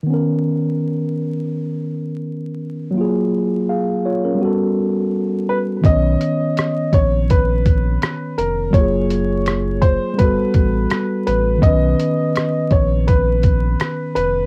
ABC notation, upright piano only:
X:1
M:4/4
L:1/8
Q:"Swing 16ths" 1/4=83
K:Blyd
V:1 name="Upright piano"
z8 | z6 z B | d3 c B3 A | c3 =c B3 B |
d3 c B3 B |]